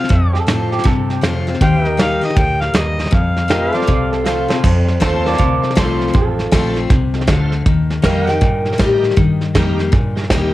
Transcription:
Already playing: C4 A4 C5 F5
0.04 snare
0.09 F2, kick, snare
0.33 A4, snare
0.47 A2 F3 A3 C4 F4, snare, hi-hat pedal
0.72 G4, snare
0.79 snare
0.84 G2 C3 A4, kick, snare
1.09 G4, snare
1.21 F2 F3 A3 C4 F4, snare, hi-hat pedal
1.47 C4 F4, snare
1.54 snare
1.61 D#2 D#3 G4 C5 F5 G5, kick, snare
1.85 A#4 D#5, snare
1.97 G3 A#3 D#4 G4 F5, snare, hi-hat pedal
2.21 D#4 G4 D#5, snare
2.30 snare
2.36 D2 A2 G5, kick, snare
2.61 F5, snare
2.74 D#2 G2 D#5, snare, hi-hat pedal
2.99 snare
3.06 snare
3.11 F2 F5, kick, snare
3.37 snare
3.48 F3 A3 C4 F4 G4 A#4, snare, hi-hat pedal
3.52 D#5
3.73 C4 F4 A4 C5 D5, snare
3.77 F5
3.82 snare
3.87 C2 C3, kick, snare
4.12 A4, snare
4.24 F3 A3 C4 F4, snare, hi-hat pedal
4.48 C4 F4 A4 C5, snare
4.63 F2, kick, snare, crash
4.88 snare
5.00 D#2 F3 A3 C4 F4 A4 C5 F5 A5, kick, snare, hi-hat pedal
5.25 A#4 D5, snare
5.33 snare
5.38 D2 C3, kick, snare
5.62 F4 A4 C5, muted fingered electric bass stroke, snare
5.70 snare
5.75 C2 F3 A3 C4 F4 A4 C5, kick, snare, hi-hat pedal
6.01 snare
6.08 snare
6.14 A1 F2 F4 A4, kick, snare
6.39 snare
6.52 A#1 F3 A3 C4 F4 A4 D5, kick, snare, hi-hat pedal
6.76 snare
6.90 C2 C3, kick, snare
7.14 F4 A4 D#5 A5, snare
7.21 G5, snare
7.26 D2 D3 F4 A4 C5 F5, kick, snare, hi-hat pedal
7.52 snare
7.66 D#2 D#3, kick, snare
7.90 snare
8.02 F2 G3 A#3 D#4 G4 A#4 D#5, kick, snare, hi-hat pedal
8.07 F5
8.27 D#4 G4, snare
8.32 G5
8.41 G2 A#2, kick, snare
8.65 D#4 G4 A#4, snare
8.73 snare
8.78 A2 G3 D#4 G4 A#4, kick, snare, hi-hat pedal
9.04 snare
9.10 snare
9.17 G2 D#3, kick, snare
9.41 snare
9.54 F2 G3 A#3 D#4 G4 A#4, kick, snare, hi-hat pedal
9.79 snare
9.92 G2 A#2, kick, snare
10.15 D#4 G4 A#4, snare
10.23 snare
10.29 D#2 G3 A#3 D#4 G4 A#4, kick, snare, hi-hat pedal

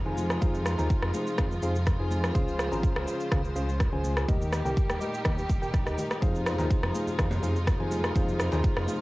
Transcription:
Already playing: C3 F3 G#3 D#4 F4
0.06 F2 D#4 F4 G#4 C5 G#5, low conga
0.18 high conga, shaker
0.30 cross-stick, shaker
0.41 F2 D#4 F4 G#4 C5 F5, kick, muted conga, high conga, low conga, shaker
0.55 shaker
0.66 cross-stick, shaker
0.78 D#2 D#4 F4 G#4 C5 A#5, muted conga, low conga, shaker
0.90 kick, shaker
1.02 F2, cross-stick
1.14 D#4 F4 G#4 C5 F5, muted conga, high conga, shaker
1.27 shaker
1.38 F2 D#4 F4 G#4 C5 F5, kick, cross-stick, low conga, shaker
1.51 muted conga, shaker
1.62 F2 D#4 F4 G#4 C5 F5, shaker
1.76 shaker
1.86 kick, cross-stick, muted conga, shaker
1.99 F2 D#4 F4 G#4 C5 G#5
2.11 high conga, shaker
2.24 cross-stick, shaker
2.35 C#2 C#3 G#3 C#4 F4 G#4 C5 F5, kick, muted conga, high conga, shaker
2.48 shaker
2.59 cross-stick, shaker
2.72 G#1 C#4 F4 G#4 C5 A#5, muted conga, low conga, shaker
2.83 kick, shaker
2.96 C#2, cross-stick
3.07 C#4 F4 G#4 C5 F5, muted conga, high conga, shaker
3.20 shaker
3.32 C#2 C#4 F4 G#4 C5 F5, kick, cross-stick, low conga, shaker
3.45 muted conga, shaker
3.55 C#2 C#4 F4 G#4 C5 F5, high conga, shaker
3.69 shaker
3.80 kick, cross-stick, muted conga, shaker
3.92 C#2 C#4 F4 G#4 C5 G#5, low conga
4.04 high conga, shaker
4.17 cross-stick, shaker
4.28 D#2 A#2 D#3 G3 D#4 G4 A#4 D#5, kick, muted conga, high conga, low conga, shaker
4.42 shaker
4.53 cross-stick, shaker
4.65 C2 G4 A#4 G5, muted conga, high conga, low conga, shaker
4.77 kick, shaker
4.89 D#2, cross-stick, shaker
5.01 G4 A#4 D#5, muted conga, high conga, shaker
5.14 shaker
5.25 D#2 G4 A#4 D#5, kick, cross-stick, high conga, low conga, shaker
5.38 muted conga, shaker
5.49 D#1, kick, shaker
5.62 G4 A#4 G5, shaker
5.74 kick, cross-stick, muted conga, shaker
5.86 D#2 G4 A#4 D#5, cross-stick, shaker
5.98 high conga, low conga, shaker
6.11 cross-stick, shaker
6.22 F2 C3 F3 G#3 D#4 F4 G#4 C5 F5, kick, muted conga, djembe tone, high conga, shaker
6.35 shaker
6.46 cross-stick, djembe tone, shaker
6.58 D#2 D#4 F4 G#4 C5 A#5, djembe slap, muted conga, low conga, shaker
6.70 kick, shaker
6.83 F2, cross-stick, djembe tone
6.94 D#4 F4 G#4 C5 F5, muted conga, high conga, shaker
7.07 djembe tone, shaker
7.19 F2 D#4 F4 G#4 C5 F5, kick, cross-stick, low conga, shaker
7.31 djembe slap, muted conga, djembe tone, shaker
7.42 F2 D#4 F4 G#4 C5 F5, high conga, shaker
7.56 shaker
7.67 kick, cross-stick, muted conga, djembe tone, shaker
7.79 F2 D#4 F4 G#4 C5 G#5, low conga
7.91 djembe tone, high conga, shaker
8.04 cross-stick, shaker
8.15 F2 D#4 F4 G#4 C5 F5, kick, muted conga, djembe tone, high conga, low conga, shaker
8.29 shaker
8.40 cross-stick, shaker
8.51 D#2 D#4 F4 G#4 C5 A#5, djembe slap, muted conga, djembe tone, low conga, shaker
8.64 kick, shaker
8.77 F2, cross-stick, djembe tone
8.87 D#4 F4 G#4 C5 F5, muted conga, high conga, shaker

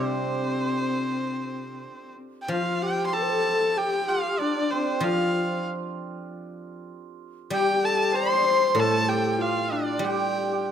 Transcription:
Already playing: C3 G3 C4 D4 F4 G4 A4 C5
2.42 G5
2.48 F3 F4 F5
2.83 G4 G5
3.06 C5 C6
3.13 A4 A5
3.23 C5
3.30 A4
3.62 A4
3.76 G4 G5
4.08 F4 F5
4.39 D4 D5
4.71 C4 C5
5.00 F3 F4 F5
7.50 G3 G4 G5
7.82 A4 A5
8.13 C5 C6
8.22 D5
8.30 C5
8.37 D5
8.46 C5
8.62 C5
8.75 A2 A4
8.79 A5
9.02 A4
9.08 G4 G5
9.33 G4 G5
9.39 F4 F5
9.71 D4 D5
9.99 G3 G4
10.04 G4 G5
10.52 G4

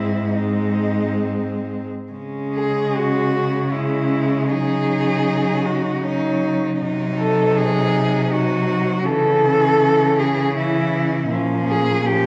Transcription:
Already playing: G#2 G#3 C4 E4
0.32 G#3 C4 D#4
2.11 C#3 G#3 C#4
2.54 G#4
2.95 F#4
3.70 G#3 C#4 E4
4.49 F#3 D#4 G#4
5.65 F#4
6.03 F#3 C#4 D#4
6.80 C3 F#3 D#4
7.19 A4
7.57 G#4
8.30 F#3 D#4 F#4
9.05 C#3 E3 C#4 A4
10.20 G#4
10.55 E3 C#4 E4
11.29 A#2 F3 C#4
11.68 G#4
12.04 F3 C#4 G4

